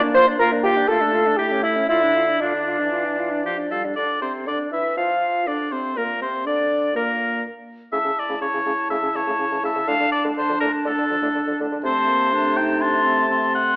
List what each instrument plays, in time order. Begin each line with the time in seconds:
Already playing: french horn A#3
0.02 clarinet D4, flute D5
0.14 clarinet F4, bassoon C5, oboe C5, flute F5
0.27 clarinet D4, flute D5
0.39 french horn A#3, clarinet F4, bassoon A#4, oboe A#4, flute F5
0.52 clarinet D4, flute D5
0.64 clarinet F4, bassoon G4, oboe G4, flute F5
0.76 clarinet D4, flute D5
0.88 french horn A3, clarinet F4, bassoon A4, oboe A4, flute F5
1.01 clarinet D4, flute D5
1.13 clarinet F4, flute F5
1.26 clarinet D4, flute D5
1.37 french horn A3, clarinet E4, bassoon G4, oboe G4, flute E5
1.50 clarinet C#4, flute C#5
1.63 bassoon E4, clarinet E4, oboe E4, flute E5
1.76 clarinet C#4, flute C#5
1.89 french horn D3, bassoon E4, oboe E4, clarinet F4, flute F5
2.02 clarinet D4, flute D5
2.15 clarinet F4, flute F5
2.28 clarinet D4, flute D5
2.40 french horn D3, bassoon D4, oboe D4, clarinet F4, flute F5
2.54 clarinet D4, flute D5
2.66 clarinet F4, flute F5
2.79 french horn E3, clarinet D4, flute D5
2.91 clarinet F4, flute F5
3.04 clarinet D4, flute D5
3.18 clarinet F4, flute F5
3.31 clarinet D4, flute D5
3.44 french horn F3, clarinet F4, oboe G4, flute F5
3.58 clarinet D4, flute D5
3.71 french horn G3, clarinet F4, oboe A4, flute F5
3.85 clarinet D4, flute D5
3.96 bassoon D3, french horn D4, clarinet D4, oboe D5, flute D5
4.21 bassoon C3, french horn C4, clarinet C4, flute C5, oboe C5
4.46 bassoon D3, french horn D4, clarinet D4, flute D5, oboe D5
4.72 bassoon E3, french horn E4, clarinet E4, oboe E5, flute E5
4.97 bassoon F3, french horn F4, clarinet F4, flute F5, oboe F5
5.46 bassoon D3, french horn D4, clarinet D4, flute D5, oboe D5
5.71 bassoon C3, french horn C4, clarinet C4, oboe C5, flute C5
5.96 bassoon A#2, french horn A#3, clarinet A#3, flute A#4, oboe A#4
6.21 bassoon C3, french horn C4, clarinet C4, flute C5, oboe C5
6.44 bassoon D3, french horn D4, clarinet D4, flute D5, oboe D5
6.93 bassoon A#2, french horn A#3, clarinet A#3, flute A#4, oboe A#4
7.92 french horn A2, bassoon C#3, clarinet E4, oboe E5, flute A5
8.05 bassoon C#3, french horn C#3
8.19 oboe D5
8.29 french horn A2, bassoon C#3
8.41 bassoon C#3, french horn C#3, oboe C#5
8.53 bassoon C#3, french horn E3
8.65 french horn A2, bassoon C#3
8.89 french horn A2, bassoon C#3, oboe E5
9.02 french horn C#3, bassoon C#3
9.15 bassoon C#3, french horn E3, oboe C#5
9.26 french horn A2, bassoon C#3
9.39 bassoon C#3, french horn C#3
9.51 bassoon C#3, french horn E3
9.63 french horn A2, bassoon C#3, oboe E5
9.75 bassoon C#3, french horn C#3
9.87 french horn A2, bassoon D3, clarinet D4, oboe F5
10.00 bassoon D3, french horn D3
10.12 oboe D5
10.24 french horn A2, bassoon D3
10.37 bassoon D3, french horn D3, oboe C5
10.49 bassoon D3, french horn F3
10.60 french horn A2, bassoon D3, oboe A#4
10.85 french horn A2, bassoon D3, oboe A4
10.97 french horn D3, bassoon D3
11.10 bassoon D3, french horn F3
11.22 french horn A2, bassoon D3
11.35 bassoon D3, french horn D3
11.47 bassoon D3, french horn F3
11.60 french horn A2, bassoon D3
11.72 bassoon D3, french horn D3
11.83 bassoon C3, french horn A3, clarinet C4, oboe C5, flute A5
12.09 french horn A#3
12.32 french horn A3, clarinet D4, flute A5
12.57 clarinet D#4, oboe G5
12.81 clarinet D4, oboe A5, flute C6
13.05 clarinet C4
13.29 clarinet C4, flute C6
13.55 oboe F#5